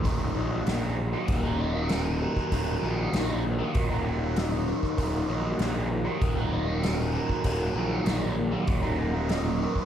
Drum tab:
HH |o---o---o---o---|o---o---o---o---|o---o---o---o---|o---o---o---o---|
SD |----o-------o---|----o-------o---|----o-------o---|----o-------o---|
BD |o-------o------o|o-------o------o|o-------o------o|o-------o------o|